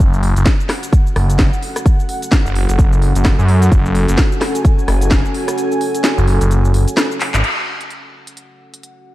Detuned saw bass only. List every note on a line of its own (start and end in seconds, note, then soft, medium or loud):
0.00 0.34 F#1 medium
0.37 0.45 F#1 loud
1.16 1.51 F#1 loud
2.46 2.67 F#1 loud
2.69 3.13 F#1 loud
3.15 3.37 F#1 loud
3.39 3.70 F#2 medium
3.72 4.06 F#1 medium
4.08 4.17 F#1 medium
4.88 5.23 F#1 loud
6.18 6.39 F#1 loud
6.41 6.85 F#1 loud
7.34 7.42 G#1 loud